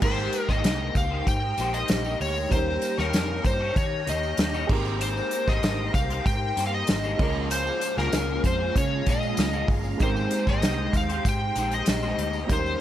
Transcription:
0.00 G#1 G#3 A#3 D#4 G4 A#4 C5 G5 A#5 C6, kick, crash, tambourine
0.04 A#4 C5
0.18 tambourine
0.33 closed hi-hat, tambourine
0.48 G#1 G#3 A#3 D#4 G4 C5 D#5, kick, snare, tambourine
0.64 C2, snare, closed hi-hat, tambourine
0.95 C#2 F5, kick, closed hi-hat, tambourine
1.10 D#4 G4 C5
1.27 G#2 G5, kick, closed hi-hat, tambourine
1.57 A#1 A#3 D#4 G4 C5, closed hi-hat, tambourine
1.74 D#5, closed hi-hat
1.88 A#1, snare, closed hi-hat, tambourine
2.04 G#3 A#3 D#4 G4, tambourine
2.20 D2 C#5, open hi-hat
2.35 tambourine
2.49 D#2 G3 A#3 C#4 D#4 G4 C5 D#5 G5 A#5, kick, closed hi-hat, tambourine
2.54 A#4
2.82 closed hi-hat, tambourine
2.97 D#2 D#3 G3 A#3 D#4 G4 A#4 C#5, snare, tambourine
3.13 F2, snare, closed hi-hat, tambourine
3.44 G2 C5, kick, closed hi-hat, tambourine
3.60 A#3 D#4 G4 C#5
3.76 D#3 C#5, kick, closed hi-hat, tambourine
4.06 D#2 A#3 D#4 G4 C#5 D#5, closed hi-hat, tambourine
4.23 tambourine
4.37 D#2, snare, closed hi-hat, tambourine
4.54 D#3 G3 A#3 D#4 G4 C#5, tambourine
4.67 G#1 G#3 A#3 C4 D#4 G4 G#4 A#4 C5 A#5, kick, crash
4.71 A#4 C5
4.85 tambourine
5.01 C5, closed hi-hat, tambourine
5.17 tambourine
5.31 closed hi-hat, tambourine
5.47 G#1 G#3 A#3 D#4 G4 C5 D#5, kick, snare, tambourine
5.63 G#1, snare, closed hi-hat, tambourine
5.94 C2 F5, kick, closed hi-hat, tambourine
6.09 D#4 G4 C5, closed hi-hat
6.26 G#2 G5, kick, closed hi-hat, tambourine
6.56 G2 A#3 D#4 G4 C5, closed hi-hat, tambourine
6.67 F5
6.75 D#5
6.87 G#1, snare, closed hi-hat, tambourine
7.03 G#3 A#3 D#4 G4 C5, tambourine
7.17 C#2 C#3 F3 G#3 A#3 C#4 F4 G#4 F5 A#5, kick, crash
7.22 A#4
7.50 C5, closed hi-hat, tambourine
7.67 tambourine
7.81 closed hi-hat, tambourine
7.97 C#2 C#3 F3 A#3 F4 G#4 A#4, snare, tambourine
8.12 C#2, snare, closed hi-hat, tambourine
8.44 F2 C5, kick, closed hi-hat, tambourine
8.59 A#3 F4 G#4
8.75 C#3 C#5, kick, closed hi-hat, tambourine
9.06 A#2 F3 A#3 F4 G#4 D#5, kick, closed hi-hat, tambourine
9.23 tambourine
9.37 C#2, snare, closed hi-hat, tambourine
9.53 C#3 F3 A#3 F4 G#4, tambourine
9.68 G1, kick, open hi-hat
9.84 tambourine
9.98 G#1 G#3 A#3 C4 D#4 G4 C5 G5, kick, closed hi-hat, tambourine
10.03 A#4 C5
10.16 tambourine
10.31 closed hi-hat, tambourine
10.46 G#1 G#3 A#3 D#4 G4 C5 D#5, kick, snare, tambourine
10.62 C2, snare, closed hi-hat, tambourine
10.93 D#2 F5, kick, closed hi-hat, tambourine
11.09 D#4 G4 C5, closed hi-hat
11.25 G#2 G5, kick, closed hi-hat, tambourine
11.55 A#1 A#3 D#4 G4 C5, closed hi-hat, tambourine
11.71 D#5, closed hi-hat
11.86 A#1, snare, closed hi-hat, tambourine
12.02 G#3 A#3 D#4 G4 C5, tambourine
12.18 D2, closed hi-hat
12.33 tambourine
12.47 D#2 G3 A#3 C#4 D#4 G4 D#5, kick, closed hi-hat, tambourine
12.51 G4 A#4 C5
12.66 tambourine

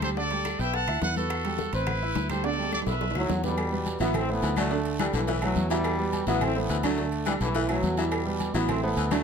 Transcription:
Already playing: D2
0.02 G3 G4 A4 C5 G5, high bongo, high conga, high timbale, short guiro, claves
0.16 D3 D4 A4 D5, high bongo, high conga, long guiro
0.31 G3 G4 G5, high bongo, high conga, high timbale
0.45 high bongo, high conga, high timbale, low timbale, short guiro, claves
0.59 B1 B3 B4 E5 G5 B5, high bongo, high conga, short guiro
0.73 F#5 A5, high bongo, high conga, high timbale, long guiro
0.87 D2 E4 E5 E6, high conga, high timbale, claves
1.01 E2 B4 F#5, high bongo, low bongo, high conga, high timbale, low timbale, short guiro
1.16 B3 F#4 A4 B4 B5, high bongo, high conga, short guiro
1.30 high bongo, high timbale, long guiro, claves
1.45 G3 G4 G5, high bongo, high conga, high timbale
1.59 high bongo, high conga, low timbale, short guiro
1.73 A1 C4 E4 B4 C5 C6, high bongo, high conga, high timbale, short guiro
1.87 high bongo, high conga, low conga, high timbale, long guiro, claves
2.02 E4 E5 E6, high conga
2.15 D2, high bongo, low bongo, high conga, high timbale, low timbale, short guiro
2.30 G3 G4 A4 C5 G5, high bongo, high conga, high timbale, short guiro, claves
2.44 D3 D4 A4 D5, high bongo, high timbale, long guiro
2.53 high timbale
2.58 G3 G4 G5, high bongo, high conga
2.63 high timbale
2.72 A4 D5, high bongo, high conga, high timbale, short guiro, claves
2.82 low timbale
2.86 B1 B3 B4 E5 B5, high bongo, high conga, short guiro
2.91 low timbale
3.01 high bongo, high conga, low timbale, long guiro
3.11 low timbale
3.15 D2 A2 F#3 E4 E5 E6, low bongo, high conga, claves
3.20 low timbale
3.29 E2, low bongo, high conga, low timbale, short guiro
3.43 B2 G3 B3 B4 B5, low bongo, high conga, short guiro
3.48 low timbale
3.58 cowbell, high conga, low agogo, long guiro, claves
3.72 G3 G4 B4, high conga
3.86 cowbell, high conga, low agogo, short guiro
4.00 A1 E3 F#3 B3 E4 E5, cowbell, high conga, short guiro
4.14 E3 A3 C4, cowbell, high conga, low conga, low agogo, long guiro, claves
4.28 E3 A3 B3 A4 C5, high conga
4.42 D2 E3, cowbell, high conga, low timbale, low agogo, short guiro
4.56 D3 F#3 A3 D4 D5, cowbell, high conga, low agogo, short guiro, claves
4.71 D3 D4 D5, cowbell, high conga, long guiro
4.85 high conga, low agogo
4.99 E3 G3 G4 A4, cowbell, high conga, low agogo, short guiro, claves
5.13 B1 A2 D3 E3, cowbell, short guiro
5.28 E3 E4 E5, cowbell, high conga, low agogo, long guiro
5.42 A2 F#3 A3 A4 B4, high conga, low agogo, claves
5.56 E2, cowbell, high conga, short guiro
5.70 B2 E3 F#3 G3 E4 E5, cowbell, low agogo, short guiro
5.84 cowbell, high conga, low agogo, long guiro, claves
5.99 G3 G4 B4, high conga
6.13 cowbell, high conga, low agogo, short guiro
6.27 A1 E3 F#3 B3 E4 E5, cowbell, high conga, short guiro
6.41 E3 A3 C4, cowbell, high conga, low conga, low agogo, long guiro, claves
6.56 E3 A3 B3 A4 C5
6.69 D2 E3, cowbell, high conga, low agogo, short guiro
6.83 D3 F#3 A3 D4 D5, cowbell, high conga, low agogo, short guiro, claves
6.98 D3 D4 D5, cowbell, long guiro
7.12 high conga, low agogo
7.26 E3 G3 G4 A4, cowbell, high conga, low agogo, short guiro, claves
7.40 B1 A2 D3 E3, cowbell, high conga, short guiro
7.55 E3 E4 E5, cowbell, high conga, low agogo, long guiro
7.69 A2 F#3 A3 A4 B4, high conga, low agogo, claves
7.83 E2, cowbell, high conga, short guiro
7.97 B2 E3 F#3 G3 E4 E5, cowbell, high conga, low agogo, short guiro
8.11 cowbell, high conga, low agogo, long guiro, claves
8.26 G3 G4 B4, high conga
8.40 cowbell, high conga, low agogo, short guiro
8.54 A1 E3 F#3 B3 E4 E5, cowbell, high conga, short guiro
8.69 E3 A3 C4, cowbell, high conga, low conga, low agogo, long guiro, claves
8.83 E3 A3 B3 A4 C5, high conga
8.97 D2 E3, cowbell, high conga, low agogo, short guiro
9.11 D3 F#3 A3 D4 D5, cowbell, high conga, low agogo, short guiro, claves

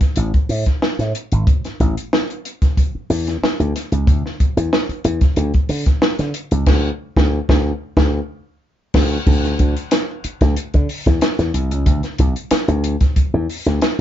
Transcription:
0.01 kick, snare, closed hi-hat
0.16 A1, closed hi-hat
0.34 kick, closed hi-hat
0.49 A2, open hi-hat
0.66 kick, snare, closed hi-hat
0.82 snare
0.99 A2, snare, closed hi-hat
1.15 closed hi-hat
1.32 G#1, closed hi-hat
1.47 kick, closed hi-hat
1.64 snare, closed hi-hat
1.80 A1, kick, closed hi-hat
1.97 closed hi-hat
2.13 snare
2.30 closed hi-hat
2.45 closed hi-hat
2.62 kick, snare, closed hi-hat
2.77 kick, closed hi-hat
2.95 muted slap bass stroke
3.10 E2, open hi-hat
3.27 snare, closed hi-hat
3.42 muted slap bass stroke, snare
3.60 D2, closed hi-hat
3.76 snare, closed hi-hat
3.92 C#2, closed hi-hat
4.07 D2, kick, closed hi-hat
4.26 snare
4.40 kick, closed hi-hat
4.57 E2, closed hi-hat
4.73 snare
4.89 muted slap bass stroke, closed hi-hat
5.04 E2, closed hi-hat
5.21 kick, snare, closed hi-hat
5.36 D2, closed hi-hat
5.54 kick, closed hi-hat
5.69 D3, open hi-hat
5.86 kick, snare, closed hi-hat
6.02 snare
6.19 D3, snare, closed hi-hat
6.34 closed hi-hat
6.51 C#2, closed hi-hat
6.66 D2, kick, snare, crash
7.17 D2, kick, snare
7.49 D2, kick, snare
7.97 D2, kick, snare
8.94 D2, kick, snare, crash
9.27 D2, kick, crash
9.44 snare, closed hi-hat
9.59 D2, kick, closed hi-hat
9.77 closed hi-hat
9.91 snare, closed hi-hat
10.24 muted slap bass stroke, closed hi-hat
10.41 D2, kick, snare, closed hi-hat
10.56 muted slap bass stroke, closed hi-hat
10.74 D3, kick, closed hi-hat
10.89 open hi-hat
11.06 E2, kick, snare, closed hi-hat
11.21 snare, closed hi-hat
11.39 E2, snare, closed hi-hat
11.54 C2, closed hi-hat
11.71 C#2, closed hi-hat
11.86 D2, kick, closed hi-hat
12.03 snare, closed hi-hat
12.18 C2, kick, closed hi-hat
12.36 closed hi-hat
12.51 muted slap bass stroke, snare, closed hi-hat
12.68 D2, closed hi-hat
12.84 closed hi-hat
13.01 kick, snare, closed hi-hat
13.16 kick, closed hi-hat
13.34 E2
13.50 open hi-hat
13.66 D2, snare, closed hi-hat
13.82 snare, closed hi-hat

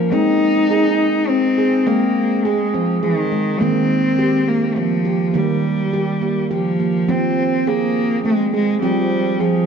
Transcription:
Already playing: F3 A#3
0.12 G#3 C4 D#4
0.71 G#4
1.29 C4
1.58 G#4
1.86 G#3 A#3 C4
2.45 G#3 G#4
2.74 F3 C4
3.03 D#3 G#4
3.32 G#3
3.61 D#3 A#3 C4
4.19 G4
4.48 A#3
4.76 F3 A#3
5.05 G4
5.34 D#3 G3 A#3
5.93 G4
6.21 A#3
6.51 F3 G4
6.80 A#3
7.08 F3 C4
7.67 A#3 G#4
8.25 G#3 C4
8.54 G#3 G#4
8.82 F3 G3 C4
9.40 F3 G#4

